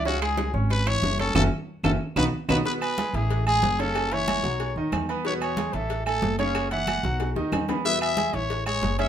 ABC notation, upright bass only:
X:1
M:4/4
L:1/8
Q:1/4=185
K:E
V:1 name="Upright bass" clef=bass
C,,3 G,,,3 F,,,2 | F,,, z2 F,,, z B,,, z B,,, | z3 A,,,3 F,,,2- | F,,,3 B,,,2 D,, E,,2- |
E,,3 A,,,3 F,,,2- | F,,,3 B,,,2 D,, E,,2- | E,,3 A,,,3 F,,,2 |]